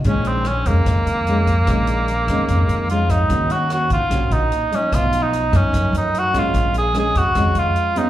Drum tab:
HH |xxxxxxxx|xxxxxxxx|xxxxxxxx|xxxxxxxx|
SD |--r-r---|r--r---r|--r-r---|r--r---r|
BD |o---o--o|o---o--o|o--oo---|o--oo--o|

HH |xxxxxxxx|
SD |--r-r---|
BD |o--oo---|